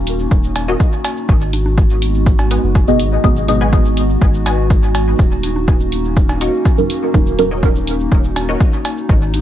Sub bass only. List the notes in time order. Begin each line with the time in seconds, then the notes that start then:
Already playing: D#1
0.31 D#1
1.29 G#1
2.63 F#1
3.00 G#1
3.24 G#1
4.22 G#1
5.19 D#1
7.14 D#1
8.12 D#1
9.09 G#1